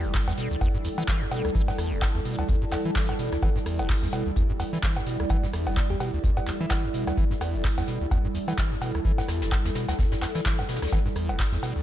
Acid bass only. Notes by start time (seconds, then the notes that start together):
0.04 E1
0.14 E3
0.28 E2
0.38 B2
0.51 D2
0.61 E2
0.74 G2
0.85 E2
0.98 E3
1.08 E3
1.21 E2
1.31 B2
1.45 D2
1.55 E3
1.68 G2
1.78 E2
1.92 E1
2.02 E3
2.15 E2
2.25 B2
2.39 D2
2.49 E2
2.62 G2
2.72 E2
2.85 E3
2.96 E3
3.09 E2
3.19 B2
3.32 D2
3.42 E3
3.56 G2
3.66 E2
3.79 E1
3.89 E3
4.03 E2
4.13 B2
4.26 D2
4.36 E2
4.49 G2
4.60 E2
4.73 E3
4.83 E3
4.96 E2
5.07 B2
5.20 D2
5.30 E3
5.43 G2
5.53 E2
5.67 E1
5.77 E3
5.90 E2
6.00 B2
6.14 D2
6.24 E2
6.37 G2
6.47 E2
6.61 E3
6.71 E3
6.84 E2
6.94 B2
7.07 D2
7.17 E3
7.31 G2
7.41 E2
7.54 E1
7.65 E3
7.78 E2
7.88 B2
8.01 D2
8.11 E2
8.25 G2
8.35 E2
8.48 E3
8.58 E3
8.71 E2
8.82 B2
8.95 D2
9.05 E3
9.18 G2
9.29 E2
9.42 E1
9.52 E3
9.65 E2
9.75 B2
9.89 D2
9.99 E2
10.12 G2
10.22 E2
10.35 E3
10.46 E3
10.59 E2
10.69 B2
10.82 D2
10.92 E3
11.06 G2
11.16 E2
11.29 E1
11.39 E3
11.52 E2
11.63 B2
11.76 D2